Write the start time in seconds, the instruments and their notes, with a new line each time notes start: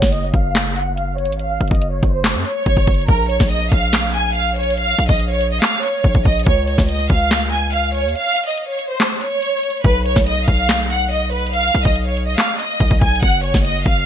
Already playing: violin section C#5
0.02 808-style bass F#1, kick, snare
0.12 violin section D#5, closed hi-hat
0.34 808-style bass F#1, violin section F5, kick, closed hi-hat
0.55 snare, clap, closed hi-hat
0.76 violin section F#5, closed hi-hat
0.97 violin section F5, closed hi-hat
1.18 violin section C#5, closed hi-hat
1.25 808-style bass G#1, closed hi-hat
1.32 closed hi-hat
1.39 violin section F5, closed hi-hat
1.61 808-style bass F#1, closed hi-hat, open hi-hat
1.68 808-style bass F#1, violin section D#5, kick, closed hi-hat
1.75 closed hi-hat
1.82 closed hi-hat
1.92 violin section C#5
2.03 808-style bass F#1, kick, closed hi-hat
2.13 violin section C5
2.24 snare, clap, closed hi-hat
2.35 808-style bass F#2
2.45 violin section C#5, closed hi-hat
2.66 808-style bass F#1, kick, closed hi-hat
2.77 808-style bass F#1, kick
2.87 808-style bass F#1, kick, closed hi-hat
2.94 closed hi-hat
3.01 closed hi-hat
3.08 808-style bass A#1, violin section A#4, kick, closed hi-hat
3.29 violin section C#5, closed hi-hat
3.40 808-style bass A#1, kick, snare
3.51 violin section D#5, closed hi-hat
3.72 808-style bass A#1, violin section F5, kick, closed hi-hat
3.93 snare, clap, closed hi-hat
4.14 violin section G#5, closed hi-hat
4.35 violin section F5, closed hi-hat
4.56 violin section C#5, closed hi-hat
4.63 closed hi-hat
4.70 closed hi-hat
4.77 violin section F5, closed hi-hat
4.98 808-style bass A#1, open hi-hat
5.09 808-style bass A#1, violin section D#5, kick
5.20 closed hi-hat
5.30 violin section C#5
5.41 closed hi-hat
5.52 violin section D#5
5.62 violin section F5, snare, clap, closed hi-hat
5.83 violin section C#5, closed hi-hat
6.04 808-style bass A#1, kick, closed hi-hat
6.15 808-style bass A#1, kick
6.25 808-style bass A#1, violin section D#5, kick, closed hi-hat
6.32 closed hi-hat
6.39 closed hi-hat
6.46 808-style bass C#2, violin section C#5, kick, closed hi-hat
6.67 violin section C#5, closed hi-hat
6.78 808-style bass C#2, kick, snare
6.89 violin section D#5, closed hi-hat
7.10 808-style bass C#2, violin section F5, kick, closed hi-hat
7.31 snare, clap, closed hi-hat
7.52 violin section G#5, closed hi-hat
7.73 violin section F5, closed hi-hat
7.94 violin section C#5, closed hi-hat
8.01 808-style bass D#2, closed hi-hat
8.08 closed hi-hat
8.15 violin section F5, closed hi-hat
8.37 closed hi-hat, open hi-hat
8.44 violin section D#5, closed hi-hat
8.51 closed hi-hat
8.58 closed hi-hat
8.68 violin section C#5
8.79 closed hi-hat
8.90 violin section C5
9.00 snare, clap, closed hi-hat
9.21 violin section C#5, closed hi-hat
9.42 closed hi-hat
9.63 closed hi-hat
9.70 closed hi-hat
9.77 closed hi-hat
9.84 808-style bass B1, violin section B4, kick, closed hi-hat
10.05 violin section C#5, closed hi-hat
10.16 808-style bass B1, kick, snare
10.27 violin section D#5, closed hi-hat
10.48 808-style bass B1, violin section F5, kick, closed hi-hat
10.69 snare, clap, closed hi-hat
10.90 violin section F#5, closed hi-hat
11.11 violin section D#5, closed hi-hat
11.32 violin section B4, closed hi-hat
11.39 closed hi-hat
11.47 closed hi-hat
11.53 violin section F5, closed hi-hat
11.75 808-style bass B1, open hi-hat
11.85 808-style bass B1, violin section D#5, kick
11.96 closed hi-hat
12.06 violin section C#5
12.17 closed hi-hat
12.27 violin section D#5
12.38 violin section F5, snare, clap, closed hi-hat
12.59 violin section D#5, closed hi-hat
12.80 808-style bass B1, kick, closed hi-hat
12.91 808-style bass B1, kick
13.01 808-style bass B1, violin section G#5, kick, closed hi-hat
13.09 closed hi-hat
13.16 closed hi-hat
13.22 808-style bass F#1, violin section F#5, kick, closed hi-hat
13.43 violin section C#5, closed hi-hat
13.54 808-style bass F#1, kick, snare
13.65 violin section D#5, closed hi-hat
13.86 808-style bass F#1, violin section F5, kick, closed hi-hat